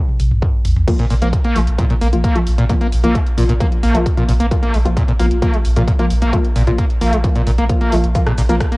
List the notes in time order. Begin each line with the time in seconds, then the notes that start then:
0.08 high tom
0.20 A#1, open hi-hat, high tom
0.31 A#1, mid tom
0.42 kick, mid tom
0.65 A#1, mid tom, open hi-hat
0.76 A#1, mid tom
0.88 F3 A#3 F4, kick, closed hi-hat, crash
0.99 A#2, closed hi-hat
1.10 A#1 A#2, open hi-hat
1.22 A#1 F3 A#3 F4, closed hi-hat
1.33 kick, closed hi-hat
1.45 A#3, closed hi-hat
1.56 A#1 F3 G#3 A#3 F4, open hi-hat
1.67 A#1, closed hi-hat
1.79 A#2 F3 A#3 F4, kick, closed hi-hat
1.90 A#2, closed hi-hat
2.01 A#1 A#3, open hi-hat
2.13 A#1 F3 A#3 F4, closed hi-hat
2.24 A#3, kick, closed hi-hat
2.35 F3 G#3 A#3 F4, closed hi-hat
2.47 A#1, open hi-hat
2.58 A#1 A#2, closed hi-hat
2.69 A#2 F3 A#3 F4, kick, closed hi-hat
2.81 A#3, closed hi-hat
2.92 A#1, open hi-hat
3.04 A#1 F3 A#3 F4, closed hi-hat
3.15 G#3, kick, closed hi-hat
3.26 closed hi-hat
3.38 A#1 A#2 F3 A#3 F4, open hi-hat
3.49 A#1 A#2, closed hi-hat
3.60 F3 A#3 F4, kick, closed hi-hat
3.72 closed hi-hat
3.83 A#1 A#3, open hi-hat
3.95 A#1 F3 G#3 A#3 F4, closed hi-hat
4.06 kick, closed hi-hat
4.17 A#2 F3 A#3 F4, closed hi-hat
4.29 A#1 A#2, open hi-hat
4.40 A#1 A#3, closed hi-hat
4.51 F3 A#3 F4, kick, closed hi-hat
4.63 A#3, closed hi-hat
4.74 A#1 G#3, open hi-hat
4.85 A#1 F3 A#3 F4, closed hi-hat
4.97 A#2, kick, closed hi-hat
5.08 A#2, closed hi-hat
5.19 A#1 F3 A#3 F4, open hi-hat
5.31 A#1, closed hi-hat
5.42 F3 A#3 F4, kick, closed hi-hat
5.54 G#3, closed hi-hat
5.65 A#1, open hi-hat
5.76 A#1 A#2 F3 A#3 F4, closed hi-hat
5.88 A#2, kick, closed hi-hat
5.99 F3 A#3 F4, closed hi-hat
6.10 A#1, open hi-hat
6.22 A#1 A#3, closed hi-hat
6.33 F3 G#3 A#3 F4, kick, closed hi-hat
6.45 closed hi-hat
6.56 A#1 A#2, open hi-hat
6.67 A#1 A#2 F3 A#3 F4, closed hi-hat
6.79 A#3, kick, closed hi-hat
6.90 closed hi-hat
7.01 A#1 F3 A#3 F4, open hi-hat
7.13 A#1 G#3, closed hi-hat
7.24 F3 A#3 F4, kick, closed hi-hat
7.36 A#2, closed hi-hat
7.47 A#1 A#2, open hi-hat
7.58 A#1 A#3, closed hi-hat
7.69 F3 A#3 F4, kick, closed hi-hat
7.81 A#3, closed hi-hat
7.92 A#1 F3 G#3 A#3 F4, open hi-hat
8.04 A#1, closed hi-hat
8.15 F3 A#3 F4, kick, closed hi-hat, shaker
8.26 A#2, cross-stick, closed hi-hat
8.38 A#1 A#2, open hi-hat, shaker
8.49 A#1 F3 A#3 F4, closed hi-hat, shaker
8.60 kick, cross-stick, closed hi-hat, shaker
8.72 A#3, closed hi-hat